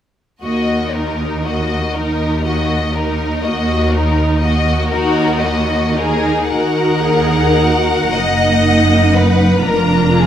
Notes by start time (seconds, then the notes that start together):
0.42 D#2 A#3 F#4 D#5
0.94 D#4 A#4
1.45 A#3 F#4 D#5
1.96 D#2 D#4 A#4
2.45 A#3 F#4 D#5
2.95 D#4 A#4
3.43 D#2 A#3 F#4 D#5
3.91 D#4 A#4
3.95 D#4
4.39 D#5
4.43 A#3 F#4
4.91 D#2 D#4 F#4 A#4
5.42 A#3 F#4 D#5
5.96 D#4 G#4 A#4
6.49 D#2 D#4 F#4 A#4 F#5
7.03 G#4
7.60 F#4
8.14 F#1 F#2 A#3 D#4 D#5
9.16 B4
9.64 F1 F2 D4 F4 A#4 A#5
10.14 G#4